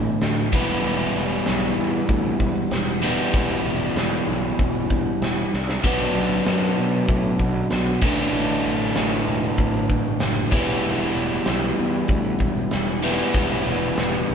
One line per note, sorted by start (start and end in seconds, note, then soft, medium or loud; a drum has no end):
0.00 0.51 A2 medium
0.00 0.51 D3 medium
0.00 0.53 E3 medium
0.00 0.51 A3 medium
0.00 0.52 D4 medium
0.21 0.45 D2 medium
0.21 snare medium
0.21 open hi-hat medium
0.53 0.76 E1 medium
0.53 3.01 E3 medium
0.53 3.01 G3 medium
0.53 3.04 B3 medium
0.53 3.02 E4 loud
0.53 kick medium
0.53 open hi-hat soft
0.84 1.07 E1 medium
0.84 open hi-hat medium
1.16 1.39 E1 medium
1.16 open hi-hat soft
1.46 1.70 B1 medium
1.46 snare loud
1.46 open hi-hat medium
1.78 2.01 E2 medium
1.78 open hi-hat soft
2.09 2.32 D2 medium
2.09 kick medium
2.09 open hi-hat medium
2.40 2.63 E1 medium
2.40 kick medium
2.40 open hi-hat soft
2.71 3.17 E1 medium
2.71 snare medium
2.71 open hi-hat medium
3.02 5.50 E3 medium
3.02 5.51 G3 medium
3.02 5.51 B3 medium
3.02 5.52 E4 medium
3.02 open hi-hat medium
3.34 3.57 E1 medium
3.34 kick loud
3.34 open hi-hat medium
3.65 3.88 E1 medium
3.65 open hi-hat soft
3.96 4.19 E1 medium
3.96 snare loud
3.96 open hi-hat medium
4.28 4.51 B1 medium
4.28 open hi-hat soft
4.59 5.05 E1 medium
4.59 kick medium
4.59 open hi-hat medium
4.90 kick medium
4.90 open hi-hat soft
5.22 5.44 E1 medium
5.22 snare medium
5.22 open hi-hat medium
5.54 5.76 C2 medium
5.54 snare medium
5.69 snare medium
5.84 6.07 B1 medium
5.84 8.01 B2 medium
5.84 8.01 F#3 medium
5.84 8.02 B3 medium
5.84 8.02 D4 medium
5.84 kick loud
5.84 open hi-hat medium
6.15 6.38 B1 medium
6.15 open hi-hat soft
6.46 6.70 F#2 medium
6.46 snare loud
6.46 open hi-hat medium
6.78 7.01 B2 medium
6.78 open hi-hat soft
7.08 7.32 A2 medium
7.08 kick loud
7.08 open hi-hat medium
7.39 7.63 B1 medium
7.39 kick medium
7.39 open hi-hat medium
7.70 7.94 B1 medium
7.70 snare medium
7.70 open hi-hat medium
8.02 8.26 A1 medium
8.02 10.51 A2 medium
8.02 10.51 D3 medium
8.02 10.51 E3 loud
8.02 10.52 A3 loud
8.02 10.52 D4 medium
8.02 kick loud
8.02 open hi-hat soft
8.33 8.56 A1 medium
8.33 open hi-hat medium
8.65 8.89 A1 medium
8.65 open hi-hat medium
8.95 9.20 A1 medium
8.95 snare loud
8.95 open hi-hat medium
9.27 9.51 E1 medium
9.27 open hi-hat soft
9.58 10.05 A1 medium
9.58 kick loud
9.58 open hi-hat medium
9.89 kick medium
9.89 open hi-hat soft
10.20 10.45 F#1 medium
10.20 snare loud
10.20 open hi-hat medium
10.51 10.76 E1 medium
10.51 13.01 E3 medium
10.51 13.03 G3 medium
10.51 13.04 B3 medium
10.51 13.02 E4 medium
10.51 kick loud
10.51 open hi-hat soft
10.84 11.07 E1 medium
10.84 open hi-hat medium
11.15 11.38 E1 medium
11.15 open hi-hat soft
11.46 11.70 B1 medium
11.46 snare loud
11.46 open hi-hat medium
11.77 12.02 E2 medium
11.77 open hi-hat soft
12.08 12.32 D2 medium
12.08 kick loud
12.08 open hi-hat medium
12.39 12.64 E1 medium
12.39 kick medium
12.39 open hi-hat soft
12.71 13.20 E1 medium
12.71 snare medium
12.71 open hi-hat medium
13.03 14.35 E3 medium
13.03 14.35 G3 medium
13.03 14.35 B3 medium
13.03 14.35 E4 loud
13.03 open hi-hat medium
13.34 13.58 E1 medium
13.34 kick loud
13.34 open hi-hat medium
13.66 13.90 E1 medium
13.66 open hi-hat soft
13.97 14.21 E1 medium
13.97 snare loud
13.97 open hi-hat medium
14.29 14.35 B1 medium
14.29 open hi-hat soft